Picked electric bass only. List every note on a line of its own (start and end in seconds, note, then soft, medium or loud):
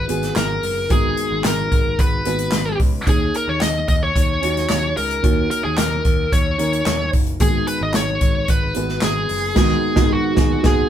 0.09 0.31 G#1 medium
0.36 0.58 G#1 loud
0.63 0.85 F#1 medium
0.91 1.13 G#1 medium
1.31 1.42 G#1 medium
1.45 1.67 G#1 loud
1.72 1.94 G#1 loud
1.99 2.21 G#1 loud
2.26 2.48 G#1 medium
2.53 2.75 G#1 medium
2.80 3.02 C#2 medium
3.07 3.29 D#2 loud
3.48 3.59 D#2 medium
3.62 3.84 D#2 medium
3.89 4.11 D#2 medium
4.16 4.38 D#2 loud
4.43 4.65 D#2 medium
4.70 4.92 D#2 medium
4.98 5.19 C#2 medium
5.24 5.46 D#2 medium
5.65 5.76 D#2 loud
5.78 6.00 D#2 loud
6.05 6.27 D#2 medium
6.33 6.54 D#2 loud
6.58 6.81 D#2 medium
6.86 7.08 D#2 loud
7.14 7.36 F#1 medium
7.41 7.62 G#1 loud
7.81 7.92 G#1 loud
7.95 8.17 G#1 medium
8.22 8.43 G#1 loud
8.49 8.71 G#1 loud
8.76 8.98 G#1 medium
9.03 9.25 G#1 loud
9.29 9.52 F#1 medium
9.57 9.75 G#1 medium
9.97 10.15 G#1 loud
10.38 10.56 G#1 loud
10.64 10.83 G#1 loud